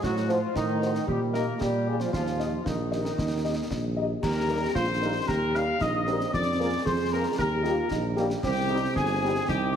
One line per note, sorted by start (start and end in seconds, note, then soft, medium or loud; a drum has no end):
0.01 0.47 A2 medium
0.01 0.13 F#3 medium
0.01 0.27 F#3 medium
0.01 0.27 F#4 medium
0.01 concert bass drum medium
0.01 snare medium
0.01 crash soft
0.17 snare soft
0.28 0.40 F3 medium
0.28 0.39 D#4 medium
0.28 0.55 F4 medium
0.28 0.39 F#4 medium
0.28 0.38 C5 medium
0.28 snare soft
0.55 0.99 A2 medium
0.55 1.04 D#3 medium
0.55 1.05 D#4 medium
0.55 concert bass drum medium
0.55 snare medium
0.81 0.91 D#4 medium
0.81 0.91 F#4 medium
0.81 0.90 C5 soft
0.81 snare soft
0.95 snare medium
1.07 1.52 A#2 medium
1.07 1.32 G3 medium
1.07 1.19 G3 medium
1.07 1.19 G4 medium
1.07 concert bass drum medium
1.33 1.58 A#3 medium
1.33 1.45 A#3 medium
1.33 1.43 D#4 medium
1.33 1.43 G4 soft
1.33 1.58 A#4 medium
1.33 1.43 D#5 medium
1.33 snare soft
1.60 2.05 A#2 medium
1.60 1.99 G3 medium
1.60 1.97 G3 medium
1.60 2.00 G4 medium
1.60 concert bass drum medium
1.60 snare medium
1.86 1.96 F4 soft
1.86 1.96 G#4 soft
1.86 1.95 D5 medium
1.99 2.12 F3 medium
1.99 2.11 F4 soft
1.99 snare medium
2.12 2.57 D#2 medium
2.12 2.45 F3 medium
2.12 2.62 F3 medium
2.12 2.61 F4 medium
2.12 concert bass drum medium
2.12 snare medium
2.26 snare soft
2.39 2.49 D#4 soft
2.39 2.49 G4 soft
2.39 2.48 D#5 soft
2.39 snare soft
2.64 3.09 A#1 medium
2.64 3.97 D#3 medium
2.64 3.93 D#3 medium
2.64 3.92 D#4 medium
2.64 concert bass drum medium
2.64 snare medium
2.91 3.00 D#4 soft
2.91 3.00 G4 soft
2.91 3.00 D#5 soft
2.91 snare soft
3.05 snare medium
3.18 3.62 D#2 medium
3.18 concert bass drum medium
3.18 snare medium
3.43 3.53 D#4 soft
3.43 3.53 G4 soft
3.43 3.53 D#5 soft
3.71 4.14 A#1 medium
3.71 concert bass drum medium
3.71 snare medium
3.96 4.06 D#4 soft
3.96 4.06 G4 soft
3.96 4.06 D#5 soft
4.22 4.67 D#2 medium
4.22 4.72 G4 medium
4.22 4.71 A#4 medium
4.22 4.72 A#5 medium
4.22 concert bass drum medium
4.22 snare medium
4.22 crash medium
4.48 4.59 G3 medium
4.48 4.58 A#3 medium
4.48 4.58 D#4 medium
4.48 4.58 G4 medium
4.48 4.58 A#4 medium
4.75 5.20 A#1 medium
4.75 4.87 F4 medium
4.75 5.24 C5 loud
4.75 5.24 C6 medium
4.75 concert bass drum medium
4.75 snare medium
5.01 5.11 G3 medium
5.01 5.11 A#3 medium
5.01 5.11 D#4 medium
5.01 5.14 D#4 medium
5.01 5.10 G4 medium
5.01 5.10 A#4 medium
5.27 5.72 D#2 medium
5.27 5.77 G4 medium
5.27 5.54 A#4 medium
5.27 5.34 A#5 medium
5.27 concert bass drum medium
5.27 snare medium
5.53 5.64 G3 medium
5.53 5.64 A#3 medium
5.53 5.63 D#4 medium
5.53 5.63 G4 medium
5.53 5.63 A#4 medium
5.53 5.81 F5 loud
5.53 5.60 F6 medium
5.53 snare medium
5.81 6.25 A#1 medium
5.81 6.05 D#4 medium
5.81 6.33 D#5 medium
5.81 6.30 D#6 medium
5.81 concert bass drum medium
5.81 snare medium
6.06 6.16 G3 medium
6.06 6.17 A#3 medium
6.06 6.34 C4 medium
6.06 6.16 D#4 medium
6.06 6.16 G4 medium
6.06 6.16 A#4 medium
6.06 snare soft
6.20 snare medium
6.33 6.77 F2 medium
6.33 6.58 D4 medium
6.33 6.82 D5 loud
6.33 6.88 D6 medium
6.33 concert bass drum medium
6.33 snare medium
6.58 6.70 G#3 medium
6.58 6.68 A#3 medium
6.58 6.70 A#3 medium
6.58 6.70 F4 medium
6.58 6.68 G#4 medium
6.58 6.68 A#4 medium
6.86 7.26 F2 medium
6.86 7.34 G#4 medium
6.86 7.12 C5 loud
6.86 7.14 C6 medium
6.86 concert bass drum medium
6.86 snare medium
7.11 7.21 G#3 medium
7.11 7.22 A#3 medium
7.11 7.21 A#3 medium
7.11 7.21 G#4 medium
7.11 7.23 A#4 medium
7.11 7.22 A#4 medium
7.11 7.39 A#5 medium
7.38 7.82 D#2 medium
7.38 7.65 G4 medium
7.38 8.13 A#4 medium
7.38 8.14 A#5 medium
7.38 concert bass drum medium
7.38 snare medium
7.64 7.73 G3 medium
7.64 7.73 A#3 medium
7.64 7.74 A#3 medium
7.64 7.73 D#4 medium
7.64 7.90 F4 medium
7.64 7.74 G4 medium
7.64 snare medium
7.90 8.35 A#1 medium
7.90 8.02 D#4 medium
7.90 concert bass drum medium
7.90 snare medium
8.16 8.26 G3 medium
8.16 8.26 A#3 medium
8.16 8.28 D4 medium
8.16 8.26 D#4 medium
8.16 8.26 G4 medium
8.16 snare soft
8.30 snare medium
8.43 8.88 C2 medium
8.43 9.44 C4 medium
8.43 8.92 G4 loud
8.43 8.92 G5 medium
8.43 concert bass drum medium
8.43 snare medium
8.43 crash soft
8.68 8.78 G3 medium
8.68 8.79 C4 medium
8.68 8.78 D#4 medium
8.68 8.79 D#4 medium
8.68 8.79 G4 medium
8.96 9.40 G1 medium
8.96 9.45 G#4 loud
8.96 9.49 G#5 medium
8.96 concert bass drum medium
8.96 snare medium
9.22 9.31 G3 medium
9.22 9.31 C4 medium
9.22 9.31 D#4 medium
9.22 9.32 D#4 medium
9.22 9.32 G4 medium
9.48 9.76 C2 medium
9.48 9.76 D#4 medium
9.48 9.73 G4 loud
9.48 9.72 G5 medium
9.48 concert bass drum medium
9.48 snare medium
9.73 9.76 D6 loud